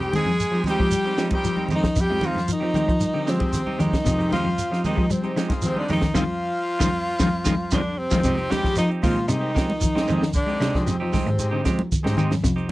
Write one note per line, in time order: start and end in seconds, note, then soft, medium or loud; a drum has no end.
0.00 0.24 F2 medium
0.00 0.11 C3 medium
0.00 0.12 G3 medium
0.00 0.19 G#3 medium
0.00 0.19 C4 medium
0.00 0.19 D#4 medium
0.00 0.11 G4 loud
0.00 0.20 G4 medium
0.00 0.14 G4 soft
0.00 0.13 G5 medium
0.00 closed hi-hat soft
0.12 0.25 D#3 medium
0.12 0.30 G#3 medium
0.12 0.30 C4 medium
0.12 0.63 G#4 loud
0.12 snare soft
0.12 closed hi-hat soft
0.12 high conga medium
0.12 low conga medium
0.12 shekere soft
0.16 0.65 G#3 medium
0.16 0.31 D#4 medium
0.16 0.64 G#5 loud
0.26 0.51 F2 medium
0.26 0.50 F3 medium
0.26 high conga medium
0.40 closed hi-hat medium
0.40 shekere medium
0.51 0.76 F3 medium
0.51 0.66 C4 soft
0.51 0.66 D#4 soft
0.51 0.66 G4 soft
0.64 0.82 G#3 medium
0.64 0.82 C4 medium
0.64 0.82 D#4 medium
0.64 0.82 G4 medium
0.64 closed hi-hat soft
0.64 high conga medium
0.64 low conga medium
0.64 shekere soft
0.70 1.29 G3 medium
0.70 1.29 G4 loud
0.70 1.30 G5 loud
0.79 1.04 F3 medium
0.79 0.91 G#3 medium
0.79 0.88 G#3 medium
0.79 0.88 C4 medium
0.79 0.89 D#4 medium
0.79 0.89 G4 medium
0.79 kick medium
0.90 1.16 G3 medium
0.90 closed hi-hat medium
0.90 high conga medium
0.90 shekere medium
1.05 1.14 G#3 medium
1.05 1.14 C4 medium
1.05 1.17 C4 soft
1.05 1.18 D#4 soft
1.05 1.15 D#4 medium
1.05 1.18 G4 medium
1.05 1.15 G4 medium
1.05 closed hi-hat soft
1.17 1.42 F3 medium
1.17 1.34 G#3 medium
1.17 1.34 C4 medium
1.17 1.34 D#4 medium
1.17 1.34 G4 medium
1.17 snare medium
1.17 closed hi-hat soft
1.17 shekere soft
1.30 1.67 G3 medium
1.30 1.68 C4 medium
1.30 1.68 D#4 medium
1.30 1.68 A#4 medium
1.30 kick medium
1.30 closed hi-hat soft
1.30 high conga loud
1.35 1.70 G3 medium
1.35 1.70 G4 medium
1.35 1.70 G5 medium
1.44 1.68 F3 medium
1.44 closed hi-hat medium
1.44 shekere medium
1.57 1.70 C4 soft
1.57 1.70 D#4 soft
1.57 1.70 G4 medium
1.57 high conga medium
1.69 1.83 F2 medium
1.69 1.86 G#3 medium
1.69 1.87 C4 medium
1.69 1.87 D#4 medium
1.69 1.87 G4 medium
1.69 closed hi-hat soft
1.69 low conga medium
1.69 shekere soft
1.75 2.03 D#3 medium
1.75 2.02 D#4 medium
1.75 2.04 D#5 medium
1.83 2.07 F3 medium
1.83 kick medium
1.83 snare medium
1.83 closed hi-hat soft
1.96 2.09 F2 medium
1.96 kick medium
1.96 closed hi-hat medium
1.96 shekere medium
2.01 2.30 G3 medium
2.01 2.27 G4 loud
2.01 2.29 G5 medium
2.10 2.34 F2 medium
2.10 2.34 G#3 medium
2.10 2.21 C4 soft
2.10 2.22 D#4 soft
2.10 2.23 G4 soft
2.21 2.38 G#3 medium
2.21 2.38 C4 medium
2.21 2.39 D#4 medium
2.21 closed hi-hat soft
2.21 high conga loud
2.21 low conga medium
2.21 shekere soft
2.26 2.52 F3 medium
2.26 2.50 F4 medium
2.26 2.51 F5 medium
2.34 2.60 F2 medium
2.34 snare soft
2.34 high conga medium
2.48 2.72 F3 medium
2.48 closed hi-hat medium
2.48 shekere medium
2.52 3.33 D#3 medium
2.52 3.31 D#4 medium
2.52 3.33 D#5 medium
2.60 2.86 F3 medium
2.60 2.73 C4 soft
2.60 2.74 D#4 soft
2.60 2.74 G4 soft
2.74 2.99 D#3 medium
2.74 2.90 G#3 medium
2.74 2.91 C4 medium
2.74 2.91 D#4 medium
2.74 2.91 G4 medium
2.74 closed hi-hat medium
2.74 high conga medium
2.74 low conga medium
2.74 shekere soft
2.88 3.12 F3 medium
2.88 kick medium
2.88 closed hi-hat soft
3.00 closed hi-hat medium
3.00 high conga medium
3.00 shekere medium
3.14 3.38 D3 medium
3.14 3.25 C4 soft
3.14 3.26 D#4 soft
3.14 3.26 G4 medium
3.26 3.52 F3 medium
3.26 3.43 G#3 medium
3.26 3.43 C4 medium
3.26 3.82 C4 medium
3.26 3.31 D#4 medium
3.26 3.43 G4 medium
3.26 3.32 G4 medium
3.26 muted clean electric guitar stroke medium
3.26 snare medium
3.26 closed hi-hat soft
3.26 shekere soft
3.31 3.83 C3 medium
3.31 3.84 C5 medium
3.38 3.62 G#3 medium
3.38 3.62 C4 medium
3.38 3.63 D#4 medium
3.38 3.63 G4 medium
3.38 kick medium
3.38 high conga loud
3.53 snare soft
3.53 closed hi-hat medium
3.53 low conga medium
3.53 shekere medium
3.66 3.78 C4 soft
3.66 3.78 D#4 medium
3.66 3.78 G4 soft
3.66 high conga medium
3.79 3.92 F2 medium
3.79 4.03 D#3 medium
3.79 4.33 D#3 medium
3.79 3.95 G#3 medium
3.79 3.95 C4 medium
3.79 4.32 D#4 medium
3.79 3.95 G4 medium
3.79 muted clean electric guitar stroke medium
3.79 closed hi-hat medium
3.79 low conga medium
3.79 shekere soft
3.83 4.33 D#5 medium
3.93 kick medium
3.93 snare medium
3.93 closed hi-hat soft
3.93 high conga medium
4.05 4.18 F2 medium
4.05 4.29 C3 loud
4.05 4.37 G#3 medium
4.05 4.37 C4 medium
4.05 4.37 D#4 medium
4.05 4.37 G4 medium
4.05 kick medium
4.05 closed hi-hat medium
4.05 shekere loud
4.18 4.43 F2 medium
4.18 4.32 C4 soft
4.18 4.32 D#4 soft
4.18 4.32 G4 soft
4.18 closed hi-hat soft
4.31 4.43 D#3 medium
4.31 4.72 F3 medium
4.31 4.48 G#3 medium
4.31 4.48 C4 medium
4.31 4.48 D#4 medium
4.31 4.81 F4 loud
4.31 4.49 G4 medium
4.31 4.82 F5 medium
4.31 snare soft
4.31 closed hi-hat medium
4.31 high conga medium
4.31 low conga medium
4.31 shekere soft
4.44 4.69 F2 medium
4.44 4.68 F3 medium
4.44 high conga medium
4.58 closed hi-hat medium
4.58 shekere medium
4.71 4.95 F3 medium
4.71 4.84 C4 soft
4.71 4.85 D#4 soft
4.71 4.85 G4 medium
4.71 snare soft
4.84 5.13 D#3 medium
4.84 5.00 G#3 medium
4.84 5.00 C4 medium
4.84 5.01 D#4 medium
4.84 5.13 D#4 medium
4.84 5.01 G4 medium
4.84 5.14 D#5 medium
4.84 closed hi-hat medium
4.84 high conga medium
4.84 low conga medium
4.84 shekere soft
4.95 5.22 F3 medium
4.95 5.05 G#3 medium
4.95 5.08 G#3 medium
4.95 5.06 C4 medium
4.95 5.06 D#4 medium
4.95 5.06 G4 medium
4.95 kick medium
5.10 5.37 C3 medium
5.10 5.34 G3 medium
5.10 5.37 C4 medium
5.10 5.37 C5 medium
5.10 closed hi-hat medium
5.10 high conga medium
5.10 shekere medium
5.22 5.32 G#3 medium
5.22 5.32 C4 medium
5.22 5.32 D#4 medium
5.22 5.36 D#4 soft
5.22 5.32 G4 medium
5.22 5.37 G4 soft
5.22 closed hi-hat soft
5.36 5.61 F3 medium
5.36 5.60 F3 medium
5.36 5.52 G#3 medium
5.36 5.53 C4 medium
5.36 5.53 D#4 medium
5.36 5.53 G4 medium
5.36 snare medium
5.36 closed hi-hat soft
5.36 shekere soft
5.48 5.84 G#3 medium
5.48 5.85 C4 medium
5.48 5.85 D#4 medium
5.48 5.86 F4 medium
5.48 kick medium
5.48 snare soft
5.48 closed hi-hat soft
5.48 high conga loud
5.62 5.79 C3 medium
5.62 5.86 F3 medium
5.62 5.81 C4 medium
5.62 5.80 C5 medium
5.62 closed hi-hat medium
5.62 low conga medium
5.62 shekere medium
5.75 5.88 D3 medium
5.75 5.88 C4 soft
5.75 5.89 D#4 soft
5.75 5.88 G4 soft
5.75 5.90 D5 medium
5.75 high conga medium
5.80 5.91 D4 medium
5.88 6.02 F2 medium
5.88 6.13 D#3 medium
5.88 6.05 G#3 medium
5.88 6.05 C4 medium
5.88 6.05 D#4 medium
5.88 6.05 G4 medium
5.88 6.14 D#5 medium
5.88 closed hi-hat soft
5.88 low conga medium
5.88 shekere soft
5.93 6.15 D#4 medium
6.01 6.14 D#3 medium
6.01 kick medium
6.01 snare medium
6.01 closed hi-hat soft
6.14 6.25 F2 medium
6.14 6.24 D#3 loud
6.14 7.68 F3 loud
6.14 6.24 F3 loud
6.14 6.24 G#3 medium
6.14 6.23 C4 loud
6.14 6.24 C4 loud
6.14 6.23 D#4 loud
6.14 6.24 D#4 loud
6.14 6.23 F4 medium
6.14 6.24 F4 medium
6.14 7.69 F4 loud
6.14 7.69 F5 medium
6.14 kick medium
6.14 snare medium
6.14 high conga loud
6.14 shekere loud
6.79 6.90 F2 loud
6.79 6.89 D#3 loud
6.79 6.89 F3 loud
6.79 6.89 G#3 medium
6.79 6.88 C4 medium
6.79 6.88 D#4 medium
6.79 6.88 F4 loud
6.79 kick medium
6.79 snare medium
6.79 high conga loud
6.79 shekere loud
7.19 7.30 F2 medium
7.19 7.29 D#3 medium
7.19 7.28 F3 medium
7.19 7.29 G#3 medium
7.19 7.28 C4 medium
7.19 7.28 C4 loud
7.19 7.28 D#4 medium
7.19 7.28 D#4 loud
7.19 7.28 F4 medium
7.19 kick medium
7.19 snare medium
7.19 high conga loud
7.19 shekere loud
7.44 7.56 F2 medium
7.44 7.54 D#3 loud
7.44 7.54 F3 medium
7.44 7.54 G#3 loud
7.44 7.53 C4 medium
7.44 7.54 C4 medium
7.44 7.53 D#4 medium
7.44 7.54 D#4 medium
7.44 7.53 F4 medium
7.44 7.54 F4 medium
7.44 kick medium
7.44 snare medium
7.44 high conga medium
7.44 shekere loud
7.71 7.82 F2 medium
7.71 7.99 D3 medium
7.71 7.81 D#3 medium
7.71 7.81 F3 medium
7.71 7.81 G#3 medium
7.71 7.80 C4 medium
7.71 7.80 C4 loud
7.71 8.00 D4 medium
7.71 7.80 D#4 medium
7.71 7.80 F4 medium
7.71 kick medium
7.71 snare medium
7.71 high conga medium
7.71 shekere loud
7.97 8.53 C3 medium
7.97 8.53 C4 medium
7.97 8.53 C4 loud
8.11 8.21 F2 medium
8.11 8.20 D#3 medium
8.11 8.20 F3 medium
8.11 8.20 G#3 medium
8.11 8.19 C4 medium
8.11 8.20 C4 medium
8.11 8.20 D#4 medium
8.11 8.19 F4 medium
8.11 8.20 F4 medium
8.11 kick medium
8.11 snare medium
8.11 high conga medium
8.11 shekere medium
8.24 8.49 F2 loud
8.24 8.48 C3 medium
8.24 8.38 G#3 medium
8.24 8.38 C4 medium
8.24 8.37 D#4 medium
8.24 8.36 G4 medium
8.24 kick loud
8.24 closed hi-hat medium
8.24 shekere medium
8.38 8.48 C4 soft
8.38 8.49 D#4 soft
8.38 8.49 G4 medium
8.38 closed hi-hat soft
8.49 8.63 D#3 medium
8.49 8.77 G3 medium
8.49 8.66 G#3 medium
8.49 8.66 C4 medium
8.49 8.66 D#4 medium
8.49 8.66 G4 medium
8.49 8.77 G4 loud
8.49 8.77 G4 medium
8.49 snare medium
8.49 closed hi-hat medium
8.49 high conga loud
8.49 low conga medium
8.49 shekere soft
8.64 8.87 F3 medium
8.64 8.86 G#3 medium
8.64 8.86 C4 medium
8.64 8.87 D#4 medium
8.64 8.87 G4 medium
8.64 kick medium
8.64 snare soft
8.76 8.89 D#3 medium
8.76 9.03 F3 loud
8.76 8.89 D#4 medium
8.76 8.90 D#4 medium
8.76 snare soft
8.76 closed hi-hat medium
8.76 shekere medium
8.88 9.02 C4 soft
8.88 9.02 D#4 medium
8.88 9.02 G4 medium
8.88 closed hi-hat soft
9.02 9.15 A#2 loud
9.02 9.27 F3 medium
9.02 9.18 G#3 medium
9.02 9.19 C4 medium
9.02 9.19 D#4 medium
9.02 9.27 F4 medium
9.02 9.28 F4 medium
9.02 9.19 G4 medium
9.02 kick medium
9.02 open hi-hat medium
9.02 high conga medium
9.02 low conga medium
9.02 shekere soft
9.16 9.28 G#3 medium
9.16 closed hi-hat soft
9.28 9.53 C3 loud
9.28 10.31 D#3 medium
9.28 9.52 G3 medium
9.28 9.51 G#3 medium
9.28 9.52 C4 medium
9.28 10.29 D#4 medium
9.28 9.52 D#4 medium
9.28 10.31 D#4 medium
9.28 9.53 G4 medium
9.28 closed hi-hat medium
9.28 shekere medium
9.41 9.54 C4 soft
9.41 9.54 D#4 soft
9.41 9.54 G4 medium
9.54 10.05 F3 medium
9.54 9.71 G#3 medium
9.54 9.71 C4 medium
9.54 9.71 D#4 medium
9.54 9.71 G4 medium
9.54 muted clean electric guitar stroke medium
9.54 kick medium
9.54 snare medium
9.54 closed hi-hat soft
9.54 shekere soft
9.70 high conga loud
9.81 10.05 F3 medium
9.81 kick medium
9.81 closed hi-hat medium
9.81 low conga medium
9.81 shekere medium
9.95 10.22 G#3 medium
9.95 10.22 C4 medium
9.95 10.07 C4 medium
9.95 10.07 D#4 medium
9.95 10.23 D#4 medium
9.95 10.07 G4 medium
9.95 10.23 G4 medium
9.95 snare medium
9.95 closed hi-hat soft
9.95 high conga medium
10.07 10.57 F2 medium
10.07 10.23 G#3 medium
10.07 10.24 C4 medium
10.07 10.24 D#4 medium
10.07 10.24 G4 medium
10.07 closed hi-hat medium
10.07 low conga medium
10.07 shekere soft
10.21 10.45 D#3 medium
10.21 snare medium
10.33 10.83 D3 medium
10.33 10.84 D4 loud
10.33 kick loud
10.33 closed hi-hat medium
10.33 shekere medium
10.38 10.85 D4 medium
10.46 10.70 G#3 medium
10.46 10.60 C4 soft
10.46 10.60 D#4 soft
10.46 10.60 G4 soft
10.46 closed hi-hat soft
10.60 10.73 C3 loud
10.60 10.76 G#3 medium
10.60 10.77 C4 medium
10.60 10.77 D#4 medium
10.60 10.77 G4 medium
10.60 snare medium
10.60 closed hi-hat medium
10.60 high conga loud
10.60 shekere soft
10.74 10.87 F3 medium
10.74 10.96 G#3 medium
10.74 10.96 C4 medium
10.74 10.97 D#4 medium
10.74 10.98 G4 medium
10.74 kick medium
10.74 snare soft
10.87 10.99 F2 loud
10.87 11.89 C3 medium
10.87 11.10 F3 medium
10.87 11.89 C4 medium
10.87 closed hi-hat medium
10.87 shekere medium
10.91 11.90 C4 medium
11.00 11.13 F3 medium
11.00 11.12 C4 soft
11.00 11.12 D#4 medium
11.00 11.12 G4 medium
11.13 11.37 D#3 medium
11.13 11.29 G#3 medium
11.13 11.29 C4 medium
11.13 11.29 D#4 medium
11.13 11.29 G4 medium
11.13 kick medium
11.13 snare soft
11.13 open hi-hat medium
11.13 high conga medium
11.13 low conga medium
11.13 shekere soft
11.27 11.51 G#2 medium
11.27 closed hi-hat soft
11.39 11.61 G#3 medium
11.39 11.62 C4 medium
11.39 11.62 D#4 medium
11.39 11.62 G4 medium
11.39 closed hi-hat medium
11.39 shekere medium
11.51 11.76 D3 medium
11.51 11.64 C4 medium
11.51 11.65 D#4 medium
11.51 11.64 G4 medium
11.64 11.90 F3 medium
11.64 11.81 G#3 medium
11.64 11.81 C4 medium
11.64 11.81 G4 medium
11.64 muted clean electric guitar stroke medium
11.64 kick medium
11.64 snare medium
11.64 closed hi-hat medium
11.64 shekere soft
11.79 high conga loud
11.92 kick medium
11.92 closed hi-hat medium
11.92 low conga medium
11.92 shekere medium
12.03 12.18 G#2 medium
12.03 12.31 G#3 medium
12.03 12.31 C4 medium
12.03 12.16 C4 medium
12.03 12.17 D#4 medium
12.03 12.31 D#4 medium
12.03 12.17 G4 medium
12.03 12.32 G4 medium
12.03 snare medium
12.03 high conga medium
12.17 12.31 F2 soft
12.17 12.41 D#3 medium
12.17 12.33 G#3 medium
12.17 12.33 C4 medium
12.17 12.34 D#4 medium
12.17 12.34 G4 medium
12.17 closed hi-hat medium
12.17 low conga medium
12.17 shekere soft
12.31 12.44 F2 medium
12.31 snare medium
12.31 high conga medium
12.44 12.69 F2 medium
12.44 12.67 C3 loud
12.44 kick medium
12.44 snare soft
12.44 closed hi-hat medium
12.44 shekere medium
12.56 12.68 C4 soft
12.56 12.69 D#4 soft
12.56 12.69 G4 medium
12.56 closed hi-hat soft